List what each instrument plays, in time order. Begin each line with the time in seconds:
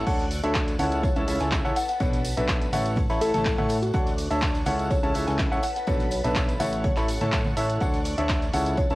Already playing: string machine C#6
0.07 analog synth bass D2, grand piano D3 D4 A4 C#5 F#5, string machine D5 F#6, kick, closed hi-hat, crash, tambourine
0.19 snare, closed hi-hat, tambourine
0.31 closed hi-hat, open hi-hat, tambourine
0.43 analog synth bass D2, grand piano D3 D4 A4 C#5 E5, closed hi-hat, tambourine
0.55 kick, snare, clap, closed hi-hat, tambourine
0.68 snare, closed hi-hat, tambourine
0.79 analog synth bass C#2, grand piano C#3 E4 A4 C#5 F#5, string machine F#5 A5 E6, closed hi-hat, open hi-hat, tambourine, high conga
0.91 closed hi-hat, tambourine
1.03 kalimba C#5, kick, closed hi-hat, tambourine
1.16 analog synth bass C#2, grand piano C#3 E4 A4 C#5 A5, closed hi-hat, tambourine
1.28 analog synth bass C#2, grand piano C#3 E4 A4 C#5 E5, closed hi-hat, open hi-hat, tambourine
1.40 analog synth bass C#2, grand piano C#3 E4 A4 C#5 G#5, snare, closed hi-hat, tambourine
1.51 kick, snare, clap, closed hi-hat, tambourine
1.65 analog synth bass C#2, grand piano E4 A4 C#5 F#5, tambourine
1.76 string machine B4 A5 B5, kalimba F#5, closed hi-hat, open hi-hat, tambourine
1.88 kalimba F#5, snare, closed hi-hat, tambourine
2.00 analog synth bass B1, grand piano B2 D4 A4 B4 F#5, kalimba C#5, kick, closed hi-hat, tambourine
2.13 snare, closed hi-hat, tambourine
2.24 closed hi-hat, open hi-hat, tambourine
2.37 analog synth bass B1, grand piano B2 D4 A4 B4 E5, closed hi-hat, tambourine
2.48 kick, snare, clap, closed hi-hat, tambourine
2.61 closed hi-hat, tambourine
2.72 analog synth bass A1, grand piano A3 E4 A4 C#5 F#5, string machine A4 F#5 C#6, kalimba B4, closed hi-hat, open hi-hat, tambourine, high conga
2.86 closed hi-hat, tambourine
2.96 kick, closed hi-hat, tambourine, high conga
3.09 analog synth bass A1, grand piano A3 E4 A4 C#5 B5, snare, closed hi-hat, tambourine
3.21 analog synth bass A1, grand piano A3 E4 A4 C#5 E5, kalimba A4, closed hi-hat, open hi-hat, tambourine
3.34 analog synth bass A1, grand piano A3 E4 A4 C#5 A5, snare, closed hi-hat, tambourine, high conga
3.45 kick, snare, clap, closed hi-hat, tambourine
3.58 analog synth bass A2, grand piano A3 E4 A4 C#5 F#5, tambourine, high conga
3.69 closed hi-hat, open hi-hat, tambourine
3.82 kalimba F#4, closed hi-hat, tambourine
3.93 analog synth bass D2, grand piano D3 D4 A4 C#5 F#5, string machine D5 C#6 F#6, kick, closed hi-hat, tambourine
4.07 snare, closed hi-hat, tambourine
4.18 closed hi-hat, open hi-hat, tambourine
4.30 analog synth bass D2, grand piano D3 D4 A4 C#5 E5, closed hi-hat, tambourine
4.41 kick, snare, clap, closed hi-hat, tambourine
4.54 snare, closed hi-hat, tambourine
4.66 analog synth bass C#2, grand piano C#3 E4 A4 C#5 F#5, string machine F#5 A5 E6, closed hi-hat, open hi-hat, tambourine, high conga
4.79 closed hi-hat, tambourine
4.91 kalimba C#5, kick, closed hi-hat, tambourine
5.03 analog synth bass C#2, grand piano C#3 E4 A4 C#5 A5, closed hi-hat, tambourine
5.14 analog synth bass C#2, grand piano C#3 E4 A4 C#5 E5, closed hi-hat, open hi-hat, tambourine
5.27 analog synth bass C#2, grand piano C#3 E4 A4 C#5 G#5, snare, closed hi-hat, tambourine
5.39 kick, snare, clap, closed hi-hat, tambourine
5.52 analog synth bass C#2, grand piano E4 A4 C#5 F#5, tambourine
5.63 string machine B4 B5, kalimba F#5, closed hi-hat, open hi-hat, tambourine
5.76 kalimba F#5, snare, closed hi-hat, tambourine
5.87 analog synth bass B1, grand piano B2 D4 A4 B4 F#5, kalimba C#5, kick, closed hi-hat, tambourine
6.00 snare, closed hi-hat, tambourine
6.11 kalimba C#5, closed hi-hat, open hi-hat, tambourine
6.24 analog synth bass B1, grand piano B2 D4 A4 B4 E5, closed hi-hat, tambourine
6.35 kick, snare, clap, closed hi-hat, tambourine
6.49 closed hi-hat, tambourine
6.60 analog synth bass A1, grand piano A3 E4 A4 C#5 F#5, string machine A4 F#5 C#6, kalimba E5, closed hi-hat, open hi-hat, tambourine, high conga
6.73 closed hi-hat, tambourine
6.84 kalimba C#5, kick, closed hi-hat, tambourine, high conga
6.96 analog synth bass A1, grand piano A3 E4 A4 C#5 B5, snare, clap, closed hi-hat, tambourine
7.08 closed hi-hat, open hi-hat, tambourine
7.21 analog synth bass A2, grand piano A3 E4 A4 C#5 A5, snare, closed hi-hat, tambourine, high conga
7.32 kick, snare, clap, closed hi-hat, tambourine
7.45 tambourine, high conga
7.57 analog synth bass A1, grand piano E4 A4 C#5 E5, closed hi-hat, open hi-hat, tambourine
7.69 closed hi-hat, tambourine
7.80 analog synth bass D2, grand piano D3 D4 A4 C#5 F#5, string machine D5 C#6 F#6, kick, closed hi-hat, tambourine
7.93 snare, closed hi-hat, tambourine
8.04 closed hi-hat, open hi-hat, tambourine
8.18 analog synth bass D2, grand piano D3 D4 A4 C#5 E5, closed hi-hat, tambourine
8.29 kick, snare, clap, closed hi-hat, tambourine
8.42 snare, closed hi-hat, tambourine
8.53 analog synth bass C#2, grand piano C#3 E4 A4 C#5 F#5, string machine F#5 A5 E6, closed hi-hat, open hi-hat, tambourine, high conga
8.66 closed hi-hat, tambourine
8.77 kalimba C#5, kick, closed hi-hat, tambourine
8.90 analog synth bass C#2, grand piano C#3 E4 A4 C#5 A5, closed hi-hat, tambourine